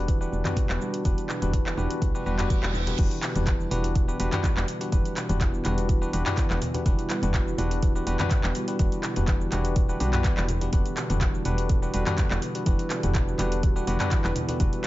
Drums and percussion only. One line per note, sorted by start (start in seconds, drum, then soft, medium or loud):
0.08 kick loud
0.08 closed hi-hat medium
0.08 cabasa soft
0.22 cabasa medium
0.33 high conga medium
0.33 cabasa soft
0.45 clap medium
0.45 closed hi-hat soft
0.45 mid tom medium
0.45 high conga medium
0.45 cabasa soft
0.56 kick loud
0.56 closed hi-hat medium
0.56 low conga medium
0.56 cabasa medium
0.70 clap medium
0.70 cabasa medium
0.81 cabasa medium
0.94 closed hi-hat soft
0.94 cabasa medium
1.04 kick loud
1.04 closed hi-hat medium
1.04 high conga medium
1.04 cabasa medium
1.18 closed hi-hat soft
1.18 cabasa soft
1.29 clap medium
1.29 cabasa medium
1.42 closed hi-hat soft
1.42 mid tom medium
1.42 high conga medium
1.42 cabasa medium
1.53 kick loud
1.53 closed hi-hat medium
1.53 cabasa soft
1.66 clap medium
1.66 cabasa medium
1.77 high conga medium
1.77 low conga medium
1.77 cabasa medium
1.91 closed hi-hat soft
1.91 cabasa soft
2.02 kick loud
2.02 closed hi-hat medium
2.02 cabasa soft
2.15 cabasa medium
2.26 high conga medium
2.26 cabasa soft
2.39 clap medium
2.39 closed hi-hat soft
2.39 mid tom medium
2.39 cabasa soft
2.50 kick loud
2.50 closed hi-hat medium
2.50 cabasa medium
2.63 clap medium
2.63 cabasa soft
2.73 low conga medium
2.73 cabasa medium
2.87 closed hi-hat soft
2.87 low conga medium
2.87 cabasa medium
2.99 kick loud
2.99 closed hi-hat medium
2.99 crash loud
2.99 high conga medium
2.99 cabasa medium
3.11 closed hi-hat soft
3.11 cabasa medium
3.23 clap loud
3.23 open hi-hat loud
3.23 cabasa medium
3.36 closed hi-hat soft
3.36 mid tom medium
3.36 high conga loud
3.36 cabasa medium
3.47 kick loud
3.47 clap loud
3.47 closed hi-hat medium
3.47 cabasa medium
3.60 cabasa medium
3.71 open hi-hat medium
3.71 high conga medium
3.71 low conga medium
3.71 cabasa medium
3.84 closed hi-hat soft
3.84 cabasa medium
3.95 kick loud
3.95 closed hi-hat medium
3.95 cabasa medium
4.09 cabasa loud
4.19 open hi-hat medium
4.19 high conga medium
4.19 cabasa medium
4.32 clap loud
4.32 closed hi-hat soft
4.32 mid tom medium
4.32 high conga medium
4.32 cabasa medium
4.43 kick loud
4.43 clap medium
4.43 closed hi-hat medium
4.43 low conga loud
4.43 cabasa medium
4.57 clap loud
4.57 cabasa medium
4.68 open hi-hat medium
4.68 cabasa medium
4.81 closed hi-hat soft
4.81 cabasa medium
4.92 kick loud
4.92 closed hi-hat medium
4.92 high conga medium
4.92 cabasa medium
5.05 closed hi-hat soft
5.05 cabasa medium
5.17 clap loud
5.17 open hi-hat medium
5.17 cabasa medium
5.29 closed hi-hat soft
5.29 mid tom medium
5.29 high conga loud
5.29 cabasa medium
5.41 kick loud
5.41 clap loud
5.41 closed hi-hat medium
5.41 cabasa medium
5.54 cabasa medium
5.65 clap medium
5.65 open hi-hat medium
5.65 high conga medium
5.65 low conga medium
5.65 cabasa medium
5.78 closed hi-hat soft
5.78 cabasa medium
5.89 kick loud
5.89 closed hi-hat medium
5.89 cabasa medium
6.03 cabasa loud
6.13 open hi-hat medium
6.13 high conga medium
6.13 cabasa medium
6.26 clap loud
6.26 closed hi-hat soft
6.26 mid tom medium
6.26 cabasa medium
6.37 kick loud
6.37 clap loud
6.37 closed hi-hat medium
6.37 cabasa medium
6.50 clap loud
6.50 cabasa medium
6.62 open hi-hat medium
6.62 low conga loud
6.62 cabasa medium
6.74 closed hi-hat soft
6.74 low conga medium
6.74 cabasa medium
6.86 kick loud
6.86 closed hi-hat medium
6.86 high conga medium
6.86 cabasa loud
6.99 closed hi-hat soft
6.99 cabasa medium
7.10 clap loud
7.10 open hi-hat medium
7.10 cabasa loud
7.22 closed hi-hat soft
7.22 mid tom medium
7.22 high conga loud
7.22 cabasa loud
7.34 kick loud
7.34 clap loud
7.34 closed hi-hat medium
7.34 cabasa medium
7.48 cabasa medium
7.58 open hi-hat medium
7.58 high conga medium
7.58 low conga medium
7.58 cabasa medium
7.71 closed hi-hat soft
7.71 cabasa medium
7.83 kick loud
7.83 closed hi-hat medium
7.83 cabasa medium
7.96 cabasa medium
8.07 open hi-hat medium
8.07 high conga medium
8.07 cabasa medium
8.20 clap loud
8.20 closed hi-hat soft
8.20 mid tom loud
8.20 high conga loud
8.20 cabasa medium
8.31 kick loud
8.31 clap loud
8.31 closed hi-hat medium
8.31 low conga medium
8.31 cabasa loud
8.44 clap loud
8.44 cabasa medium
8.55 open hi-hat medium
8.55 cabasa loud
8.68 closed hi-hat soft
8.68 cabasa medium
8.79 kick loud
8.79 closed hi-hat medium
8.79 high conga medium
8.79 cabasa loud
8.92 closed hi-hat soft
8.92 cabasa medium
9.03 clap medium
9.03 open hi-hat medium
9.03 cabasa loud
9.16 closed hi-hat soft
9.16 mid tom medium
9.16 high conga medium
9.16 cabasa medium
9.28 kick loud
9.28 clap loud
9.28 closed hi-hat medium
9.28 cabasa medium
9.41 cabasa medium
9.52 clap medium
9.52 open hi-hat medium
9.52 high conga medium
9.52 low conga medium
9.52 cabasa medium
9.65 closed hi-hat soft
9.65 cabasa medium
9.76 kick loud
9.76 closed hi-hat medium
9.76 cabasa medium
9.89 cabasa medium
10.00 open hi-hat medium
10.00 high conga medium
10.00 cabasa medium
10.13 clap medium
10.13 closed hi-hat soft
10.13 mid tom loud
10.13 cabasa medium
10.24 kick loud
10.24 clap loud
10.24 closed hi-hat medium
10.24 cabasa loud
10.37 clap medium
10.37 cabasa medium
10.48 open hi-hat medium
10.48 low conga medium
10.48 cabasa medium
10.61 closed hi-hat soft
10.61 low conga medium
10.61 cabasa medium
10.73 kick loud
10.73 closed hi-hat medium
10.73 high conga medium
10.73 cabasa medium
10.86 closed hi-hat soft
10.86 cabasa medium
10.97 clap medium
10.97 open hi-hat medium
10.97 cabasa medium
11.10 closed hi-hat soft
11.10 mid tom medium
11.10 high conga loud
11.10 cabasa medium
11.21 kick loud
11.21 clap loud
11.21 closed hi-hat medium
11.21 cabasa medium
11.35 cabasa medium
11.45 open hi-hat medium
11.45 high conga medium
11.45 low conga medium
11.45 cabasa medium
11.58 closed hi-hat soft
11.58 cabasa medium
11.69 kick loud
11.69 closed hi-hat medium
11.69 cabasa medium
11.83 cabasa medium
11.94 open hi-hat medium
11.94 high conga medium
11.94 cabasa medium
12.07 clap medium
12.07 closed hi-hat soft
12.07 mid tom loud
12.07 high conga medium
12.07 cabasa medium
12.18 kick loud
12.18 clap loud
12.18 closed hi-hat medium
12.18 low conga medium
12.18 cabasa medium
12.31 clap medium
12.31 cabasa medium
12.42 open hi-hat medium
12.42 cabasa loud
12.55 closed hi-hat soft
12.55 cabasa medium
12.66 kick loud
12.66 closed hi-hat medium
12.66 high conga medium
12.66 cabasa medium
12.79 closed hi-hat soft
12.79 cabasa medium
12.90 clap medium
12.90 open hi-hat medium
12.90 cabasa medium
13.03 closed hi-hat soft
13.03 mid tom medium
13.03 high conga medium
13.03 cabasa medium
13.15 kick loud
13.15 clap loud
13.15 closed hi-hat medium
13.15 cabasa medium
13.28 cabasa soft
13.38 clap medium
13.38 open hi-hat loud
13.38 high conga medium
13.38 low conga medium
13.38 cabasa medium
13.52 closed hi-hat soft
13.52 cabasa medium
13.63 kick loud
13.63 closed hi-hat medium
13.63 cabasa medium
13.77 cabasa medium
13.87 open hi-hat medium
13.87 high conga medium
13.87 cabasa medium
14.00 clap medium
14.00 closed hi-hat soft
14.00 mid tom medium
14.00 cabasa soft
14.11 kick loud
14.11 clap loud
14.11 closed hi-hat medium
14.11 cabasa medium
14.24 clap medium
14.24 cabasa medium
14.36 open hi-hat medium
14.36 low conga medium
14.36 cabasa medium
14.49 closed hi-hat medium
14.49 low conga medium
14.49 cabasa medium
14.60 kick loud
14.60 closed hi-hat medium
14.60 high conga medium
14.60 cabasa medium
14.73 closed hi-hat soft
14.73 cabasa soft